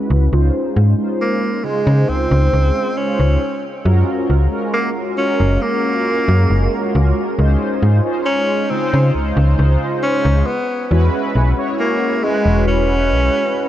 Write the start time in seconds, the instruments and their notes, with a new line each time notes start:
Already playing: analog polysynth G#3 C#4 E4 F#4 B4
0.10 fm bass C#2
0.31 fm bass C#2, analog polysynth G#3 C#4 D#4 F4 C5
0.76 fm bass G#2
0.97 analog polysynth G#3 C#4 D#4 F4 C5
1.21 tenor saxophone A#3
1.63 analog polysynth C#3 G#3 D#4 F4 C5, tenor saxophone G#3
1.87 fm bass C#3
2.09 fm bass C#2, tenor saxophone C4
2.31 fm bass C#2
2.53 fm bass C#2
2.97 tenor saxophone C#4
3.20 fm bass C#2
3.84 fm bass F#2, analog polysynth G#3 C#4 F4 F#4 A#4
4.30 fm bass C#2
4.51 analog polysynth G#3 C#4 F4 F#4 A#4
4.73 tenor saxophone A#3
5.16 analog polysynth G#3 C#4 F4 F#4 A#4, tenor saxophone C#4
5.40 fm bass F#1
5.62 tenor saxophone A#3
6.28 fm bass F#2
6.50 fm bass F#1
6.95 fm bass C#2
7.37 fm bass C#2, analog polysynth G#3 C#4 D#4 F4 C5
7.82 fm bass G#2
8.04 analog polysynth G#3 C#4 D#4 F4 C5
8.26 tenor saxophone C#4
8.69 analog polysynth C#3 G#3 D#4 F4 C5, tenor saxophone C4
8.94 fm bass C#3
9.15 fm bass C#2
9.37 fm bass C#2
9.59 fm bass C#2
10.03 tenor saxophone C#4
10.25 fm bass C#2
10.46 tenor saxophone B3
10.91 fm bass E2, analog polysynth G#3 C#4 E4 F#4 B4
11.35 fm bass B1
11.57 analog polysynth G#3 C#4 E4 F#4 C#5
11.80 tenor saxophone A#3
12.22 analog polysynth G#3 C#4 E4 F#4 B4, tenor saxophone G#3
12.46 fm bass E1
12.67 tenor saxophone C#4
13.12 fm bass B1